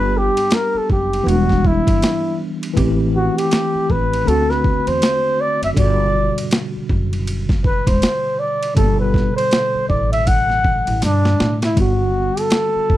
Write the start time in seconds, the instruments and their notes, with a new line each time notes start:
Already playing: upright bass G1, tine electric piano G3 B3 D4 G4, flugelhorn B4
0.17 flugelhorn G4
0.37 ride
0.51 flugelhorn A#4, snare, hi-hat pedal, ride
0.74 flugelhorn A4, muted upright bass stroke
0.90 upright bass F#1, flugelhorn G4, kick
1.13 ride
1.24 upright bass E1, tine electric piano E3 B3 D4
1.28 flugelhorn F#4, tine electric piano F#4, ride
1.36 tine electric piano G3
1.49 kick, snare
1.65 flugelhorn E4, kick
1.87 upright bass G1, kick, ride
2.02 snare, hi-hat pedal, ride
2.63 ride
2.73 upright bass A1, tine electric piano E3 A3 C4, kick, ride
2.78 tine electric piano G4
3.16 flugelhorn F#4
3.38 flugelhorn G4, ride
3.51 snare, hi-hat pedal, ride
3.75 muted upright bass stroke
3.90 upright bass A1, flugelhorn B4, kick
4.13 ride
4.24 upright bass D2, tine electric piano D3 A3 C4, flugelhorn A4, ride
4.30 tine electric piano F#4
4.50 flugelhorn B4, snare
4.64 kick
4.87 upright bass E2, flugelhorn C5, ride
5.02 snare, hi-hat pedal, ride
5.41 flugelhorn D5
5.62 upright bass F#1, flugelhorn E5, ride
5.74 upright bass G1, tine electric piano B2 D3 G3, kick, ride
5.79 tine electric piano F#4, flugelhorn D5
6.38 ride
6.51 snare, hi-hat pedal, ride
6.76 muted upright bass stroke
6.89 upright bass F#1, kick
7.13 ride
7.27 ride
7.49 kick, snare
7.64 flugelhorn B4, kick
7.87 upright bass E1, flugelhorn C5, kick, ride
8.02 snare, hi-hat pedal, ride
8.39 flugelhorn D5
8.63 ride
8.75 upright bass G1, tine electric piano D3 G3 A#3, flugelhorn A4, kick, ride
8.80 tine electric piano A4
8.85 tine electric piano B2
9.00 flugelhorn B4
9.14 kick, snare
9.37 flugelhorn C5, ride
9.51 snare, hi-hat pedal, ride
9.75 muted upright bass stroke
9.89 upright bass A1, flugelhorn D5, kick
10.12 flugelhorn E5, ride
10.27 flugelhorn F#5, kick, ride
10.50 snare
10.64 kick
10.87 upright bass A1, ride
11.02 upright bass G2, flugelhorn D4, snare, hi-hat pedal, ride
11.25 snare
11.40 upright bass A2, snare
11.62 flugelhorn E4, snare, ride
11.75 upright bass G1, tine electric piano D3 G3 B3, kick, ride
11.80 tine electric piano F#4, flugelhorn F#4
12.37 flugelhorn A4, ride
12.50 snare, hi-hat pedal, ride
12.75 muted upright bass stroke
12.90 upright bass F#1, kick